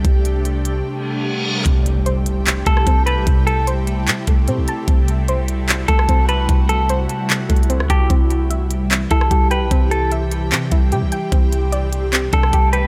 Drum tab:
HH |x-----x-----x-----x-----------------------------|x-----x-----x-----x-----x-----x-----x-----x-----|x-----x-----x-----x-----x-----x-----x-----x-----|x-----x-----x-----x-----x-----x-----x-----x-----|
CP |------------------------------------------------|------------------------x-----------------------|------------------------x-----------------------|------------------------x-----------------------|
SD |------------------------------------------------|---------------------------------r--------------|------------------------------------------------|---------------------------------r--------------|
BD |o-----------------------------------------------|o-----------------------------o-----o-----------|o-----------------------------o-----------------|o-----------------------------o-----o-----------|

HH |x-----x-----x-----x-----x-----x-x-x-x-----x-----|x-----x-----x-----x-----x-----x-----x-----x-----|x-----x-----x-----x-----x-----x-----x-----x-----|x-----x-----x-----x-----x-----x-----x-----x-----|
CP |------------------------x-----------------------|------------------------x-----------------------|------------------------x-----------------------|------------------------x-----------------------|
SD |---------------------------------------r--------|---------------------------------r--------------|------------------------------------------------|---------------------------------r--------------|
BD |o-----------------------------o-----------o-----|o-----------------------------o-----o-----------|o-----------------------------o-----------------|o-----------------------------o-----o-----------|